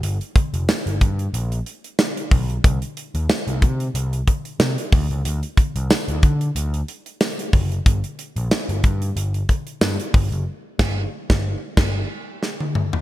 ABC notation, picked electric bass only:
X:1
M:4/4
L:1/16
Q:"Swing 16ths" 1/4=92
K:Fmix
V:1 name="Picked electric bass" clef=bass
G,,, z2 F,,, z G,,, G,,2 B,,,2 z4 =B,,,2 | C,, z2 E,, z C,, C,2 C,,2 z2 C, z D,, _D,, | D,, z2 C,, z D,, D,2 D,,2 z4 ^F,,,2 | G,,, z2 B,,, z G,,, G,,2 G,,,2 z2 G,, z G,,, ^F,,, |
z2 G,,,2 z G,,,2 z G,,,2 z6 |]